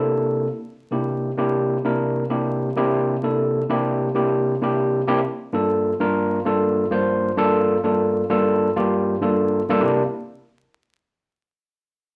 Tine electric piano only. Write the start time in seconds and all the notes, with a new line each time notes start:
Already playing: C3 A#3 D4 E4 A4
0.91 C3 A#3 D4 E4 G4
1.37 C3 A#3 D4 E4 G4
1.85 C3 A#3 D4 E4 A#4
2.30 C3 A#3 D4 E4 G4
2.76 C3 A#3 D4 E4 G4
3.23 C3 A#3 D4 E4 A4
3.69 C3 A#3 D4 E4 G4
4.15 C3 A#3 D4 E4 G4
4.62 C3 A#3 D4 E4 G4
5.07 C3 A#3 D4 E4 G4
5.53 G2 A#3 D4 F4 A4
6.00 G2 A#3 D4 F4 A#4
6.45 G2 A#3 D4 F4 A4
6.91 G2 A#3 D4 F4 C5
7.37 G2 A#3 D4 F4 A4
7.83 G2 A#3 D4 F4 A4
8.30 G2 A#3 D4 F4 A4
8.76 G2 A#3 D4 F4 G4
9.21 G2 A#3 D4 F4 A4
9.69 G2 A#3 D4 F4 A4
9.81 C3 A#3 D4 E4 G4